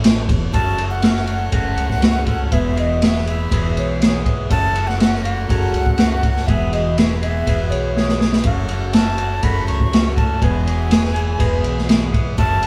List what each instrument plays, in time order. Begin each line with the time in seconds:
Already playing: fingered electric bass A1, clean electric guitar A2, transistor combo organ F#3 A3 C#4 A4 C#5
0.04 snare, ride
0.28 fingered electric bass E1, clean electric guitar E2, kick, ride
0.53 fingered electric bass F#1, clean electric guitar F#2 C#3 F#3 A3 C#4 F#4, transistor combo organ F#3 A3 C#4 A4 C#5, flute A5, kick, ride
0.77 clean electric guitar F#3 A3 C#4 F#4, ride
0.90 flute F#5
1.02 clean electric guitar F#3 A3 C#4 F#4, snare, ride
1.16 snare
1.26 clean electric guitar F#3 A3 C#4 F#4, flute F#5, ride
1.51 fingered electric bass F#1, clean electric guitar F#2 C#3 F#3 A3 C#4 F#4, kick, ride
1.77 fingered electric bass C#2, ride
1.90 kick, snare
2.01 clean electric guitar F#3 A3 C#4 F#4, snare, ride
2.25 clean electric guitar F#3 A3 C#4 F#4, kick, ride
2.50 fingered electric bass E1, clean electric guitar E2 B2 E3 G#3 B3 G#4, transistor combo organ E3 G#3 B3 G#4 B4, flute E5, kick, ride
2.76 clean electric guitar E3 G#3 B3 G#4, flute D#5, ride
3.01 clean electric guitar E3 G#3 B3 G#4, flute E5, snare, ride
3.15 snare
3.26 clean electric guitar E3 G#3 B3 G#4, flute E5, ride
3.51 fingered electric bass E1, clean electric guitar E2 B2 E3 G#3 B3 G#4, kick, ride
3.76 fingered electric bass B1, flute C#5, ride
4.00 clean electric guitar E3 G#3 B3 G#4, snare, ride
4.25 clean electric guitar E3 G#3 B3 G#4, kick, ride
4.49 fingered electric bass F#1, clean electric guitar F#2 C#3 F#3 A3 C#4 F#4, transistor combo organ F#3 A3 C#4 A4 C#5, flute A5, kick, ride
4.75 clean electric guitar F#3 A3 C#4 F#4, ride
4.87 flute F#5, snare
4.99 clean electric guitar F#3 A3 C#4 F#4, snare, ride
5.14 snare
5.23 clean electric guitar F#3 A3 C#4 F#4, flute F#5, ride
5.48 fingered electric bass F#1, clean electric guitar F#2 C#3 F#3 A3 C#4 F#4, kick, ride
5.74 fingered electric bass C#2, ride
5.86 kick
5.98 clean electric guitar F#3 A3 C#4 F#4, snare, ride
6.22 clean electric guitar F#3 A3 C#4 F#4, kick, ride
6.37 snare
6.47 fingered electric bass E1, clean electric guitar E2 B2 E3 G#3 B3 G#4, transistor combo organ E3 G#3 B3 G#4 B4, flute E5, kick, ride
6.73 clean electric guitar E3 G#3 B3 G#4, flute D#5, ride
6.97 clean electric guitar E3 G#3 B3 G#4, flute E5, snare, ride
7.22 clean electric guitar E3 G#3 B3 G#4, flute E5, ride
7.46 fingered electric bass E1, clean electric guitar E2 B2 E3 G#3 B3 G#4, kick, ride
7.71 fingered electric bass B1, flute C#5, ride
7.94 clean electric guitar E3 G#3 B3 G#4, snare
8.09 snare
8.20 clean electric guitar E3 G#3 B3 G#4, snare
8.32 snare
8.44 fingered electric bass F#1, clean electric guitar F#2 C#3 F#3 A3 C#4, transistor combo organ F#3 A3 C#4, flute F#5, kick, ride
8.48 clean electric guitar F#4, transistor combo organ A4 C#5
8.69 clean electric guitar F#3 A3 C#4 F#4, ride
8.93 clean electric guitar F#3 A3 C#4, flute A5, snare, ride
8.97 clean electric guitar F#4
9.07 snare
9.18 clean electric guitar F#3 A3 C#4 F#4, ride
9.43 fingered electric bass F#1, clean electric guitar F#2 C#3 F#3 A3 C#4 F#4, flute B5, kick, ride
9.68 fingered electric bass C#2, flute C#6, ride
9.80 kick
9.91 clean electric guitar F#3 A3 C#4 F#4, snare, ride
10.15 clean electric guitar F#3 A3 C#4 F#4, flute A5, kick, ride
10.41 fingered electric bass E1, clean electric guitar E2 B2 E3 G#3 B3 G#4, transistor combo organ E3 G#3 B3 G#4 B4, flute G#5, kick, ride
10.66 clean electric guitar E3 G#3 B3 G#4, ride
10.90 clean electric guitar E3 G#3 B3 G#4, snare, ride
11.04 snare
11.14 clean electric guitar E3 G#3 B3 G#4, ride
11.38 fingered electric bass E1, clean electric guitar E2 B2 E3 G#3 B3 G#4, kick, ride
11.64 fingered electric bass B1, ride
11.78 snare
11.88 clean electric guitar E3 G#3 B3 G#4, snare, ride
12.12 clean electric guitar E3 G#3 B3 G#4, kick, ride
12.37 fingered electric bass F#1, clean electric guitar F#2 C#3 F#3 A3 C#4 F#4, transistor combo organ F#3 A3 C#4 A4 C#5, flute A5, kick, ride
12.63 clean electric guitar C#4 F#4, ride